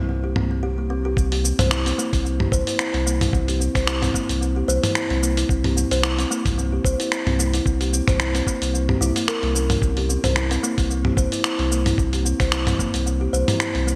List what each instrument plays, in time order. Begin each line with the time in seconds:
Already playing: sub bass C2
0.09 kalimba C4
0.24 kalimba G4
0.36 kalimba A#3, mid tom
0.51 kalimba C4
0.63 kalimba G4
0.78 kalimba A#3
0.90 kalimba C4
1.05 kalimba G4
1.17 sub bass C2, kalimba C4, kick, cabasa
1.32 kalimba G4, open hi-hat
1.44 kalimba C4, cabasa
1.59 sub bass C2, kalimba C5, mid tom, open hi-hat, cabasa
1.71 kalimba E4, finger snap, cabasa
1.86 kalimba C4, open hi-hat, cabasa
1.98 kalimba A#3, cabasa
2.13 sub bass C2, kalimba C4, kick, open hi-hat, cabasa
2.25 kalimba C4, cabasa
2.40 kalimba G4, mid tom
2.52 sub bass C2, kalimba C5, kick, cabasa
2.67 kalimba E4, open hi-hat, cabasa
2.79 kalimba E4, finger snap, cabasa
2.94 sub bass C2, kalimba C4, open hi-hat
3.06 kalimba A#3, cabasa
3.21 kalimba E4, mid tom, open hi-hat, cabasa
3.33 sub bass C2, kalimba C4, kick, cabasa
3.48 kalimba G4, open hi-hat, cabasa
3.60 kalimba C4, cabasa
3.75 sub bass C2, kalimba C5, finger snap, kick, open hi-hat, cabasa
3.87 kalimba E4, finger snap, cabasa
4.02 kalimba C4, mid tom, open hi-hat, cabasa
4.14 kalimba A#3, kick, cabasa
4.29 sub bass C2, kalimba C4, open hi-hat, cabasa
4.41 kalimba C4, cabasa
4.56 kalimba G4
4.68 sub bass C2, kalimba C5, cabasa
4.83 kalimba E4, mid tom, open hi-hat, cabasa
4.95 kalimba E4, finger snap, cabasa
5.10 sub bass C2, kalimba C4, open hi-hat
5.23 kalimba A#3, cabasa
5.37 kalimba E4, open hi-hat, cabasa
5.49 sub bass C2, kalimba C4, kick, cabasa
5.64 kalimba G4, mid tom, open hi-hat
5.77 kalimba C4, cabasa
5.91 sub bass C2, kalimba C5, open hi-hat, cabasa
6.03 kalimba E4, finger snap, cabasa
6.18 kalimba C4, open hi-hat, cabasa
6.30 kalimba A#3, cabasa
6.45 sub bass C2, kalimba C4, kick, mid tom, open hi-hat, cabasa
6.58 kalimba C4, cabasa
6.72 kalimba G4
6.84 sub bass C2, kalimba C5, kick, cabasa
7.00 kalimba E4, open hi-hat, cabasa
7.12 kalimba E4, finger snap, cabasa
7.26 sub bass C2, kalimba C4, mid tom, open hi-hat
7.39 kalimba A#3, cabasa
7.54 kalimba E4, open hi-hat, cabasa
7.66 sub bass C2, kalimba C4, kick, cabasa
7.81 kalimba G4, open hi-hat, cabasa
7.93 kalimba C4, cabasa
8.08 sub bass C2, kalimba C5, finger snap, kick, mid tom, open hi-hat, cabasa
8.20 kalimba E4, finger snap, cabasa
8.35 kalimba C4, open hi-hat, cabasa
8.47 kalimba A#3, kick, cabasa
8.62 sub bass C2, kalimba C4, open hi-hat, cabasa
8.74 kalimba C4, cabasa
8.89 kalimba G4, mid tom
9.01 sub bass C2, kalimba E4, cabasa
9.16 kalimba A#3, open hi-hat, cabasa
9.28 kalimba A#4, finger snap, cabasa
9.43 sub bass C2, kalimba A#3, open hi-hat
9.55 kalimba C#4, cabasa
9.70 kalimba C#4, mid tom, open hi-hat, cabasa
9.82 sub bass C2, kalimba C4, kick, cabasa
9.97 kalimba G4, open hi-hat
10.09 kalimba C4, cabasa
10.24 sub bass C2, kalimba C5, mid tom, open hi-hat, cabasa
10.36 kalimba E4, finger snap, cabasa
10.51 kalimba C4, open hi-hat, cabasa
10.63 kalimba A#3, cabasa
10.78 sub bass C2, kalimba C4, kick, open hi-hat, cabasa
10.90 kalimba C4, cabasa
11.05 kalimba G4, mid tom
11.17 sub bass C2, kalimba C5, kick, cabasa
11.32 kalimba E4, open hi-hat, cabasa
11.44 kalimba E4, finger snap, cabasa
11.59 sub bass C2, kalimba C4, open hi-hat
11.71 kalimba A#3, cabasa
11.86 kalimba E4, mid tom, open hi-hat, cabasa
11.98 sub bass C2, kalimba C4, kick, cabasa
12.13 kalimba G4, open hi-hat, cabasa
12.25 kalimba C4, cabasa
12.40 sub bass C2, kalimba C5, finger snap, kick, open hi-hat, cabasa
12.52 kalimba E4, finger snap, cabasa
12.67 kalimba C4, mid tom, open hi-hat, cabasa
12.79 kalimba A#3, kick, cabasa
12.94 sub bass C2, kalimba C4, open hi-hat, cabasa
13.06 kalimba C4, cabasa
13.21 kalimba G4
13.33 sub bass C2, kalimba C5, cabasa
13.48 kalimba E4, mid tom, open hi-hat, cabasa
13.60 kalimba E4, finger snap, cabasa
13.75 sub bass C2, kalimba C4, open hi-hat
13.87 kalimba A#3, cabasa